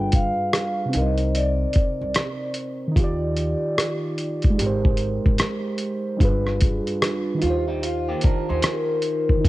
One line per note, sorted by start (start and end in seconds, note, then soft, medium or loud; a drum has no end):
0.00 0.29 G1 loud
0.00 0.91 G3 medium
0.00 0.92 D4 medium
0.00 0.93 F4 medium
0.00 0.94 G#4 medium
0.00 0.95 B4 medium
0.00 0.15 G5 loud
0.12 0.97 F5 loud
0.12 kick medium
0.12 closed hi-hat medium
0.53 cross-stick loud
0.53 closed hi-hat medium
0.85 2.88 C3 medium
0.85 2.90 C4 medium
0.93 1.63 C2 loud
0.93 2.90 D#4 medium
0.93 2.94 A#4 soft
0.93 1.36 D#5 medium
0.93 closed hi-hat medium
1.01 2.96 C5 medium
1.18 closed hi-hat soft
1.35 2.53 D5 medium
1.35 closed hi-hat medium
1.73 kick medium
1.73 closed hi-hat medium
2.01 2.13 C2 medium
2.14 cross-stick loud
2.14 closed hi-hat medium
2.54 closed hi-hat medium
2.87 4.51 D#3 medium
2.87 4.53 D#4 medium
2.96 3.53 D#2 medium
2.96 4.55 F4 medium
2.96 4.57 G4 medium
2.96 kick medium
2.96 closed hi-hat medium
3.04 4.59 D5 medium
3.37 closed hi-hat medium
3.78 cross-stick loud
3.78 closed hi-hat medium
4.18 closed hi-hat medium
4.42 kick medium
4.42 closed hi-hat soft
4.50 6.13 G#3 medium
4.54 6.15 D#4 medium
4.54 6.17 G4 medium
4.59 5.16 G#1 loud
4.59 6.19 A#4 medium
4.59 closed hi-hat medium
4.66 6.21 C5 medium
4.85 kick medium
4.97 closed hi-hat medium
5.26 5.38 G#1 medium
5.26 kick medium
5.38 cross-stick loud
5.38 closed hi-hat medium
5.78 closed hi-hat medium
6.16 7.40 G3 medium
6.16 7.41 D4 medium
6.16 kick loud
6.20 6.77 G1 loud
6.20 7.41 F4 medium
6.20 7.43 G#4 medium
6.20 7.44 B4 medium
6.20 closed hi-hat medium
6.47 cross-stick soft
6.61 kick medium
6.61 closed hi-hat medium
6.87 closed hi-hat soft
7.02 cross-stick loud
7.02 closed hi-hat medium
7.34 9.36 D#3 medium
7.38 9.39 D#4 medium
7.38 7.67 F4 medium
7.38 9.41 F4 medium
7.38 closed hi-hat medium
7.43 8.12 D#2 medium
7.43 9.43 G4 medium
7.50 9.45 C5 medium
7.68 7.82 G3 medium
7.68 7.82 D#4 medium
7.83 8.07 F4 medium
7.83 closed hi-hat medium
8.09 8.23 A#3 medium
8.09 8.22 G4 medium
8.21 8.48 D4 medium
8.21 8.48 A#4 medium
8.21 kick medium
8.21 closed hi-hat medium
8.49 8.62 D#2 medium
8.49 9.41 D#4 medium
8.49 9.41 C5 medium
8.62 cross-stick loud
8.62 closed hi-hat medium
8.67 9.42 A#4 medium
9.02 closed hi-hat medium
9.29 kick medium
9.37 9.49 D#3 medium
9.37 9.49 D#4 medium
9.45 9.49 D#2 loud
9.45 9.49 F4 medium
9.45 kick loud
9.45 closed hi-hat medium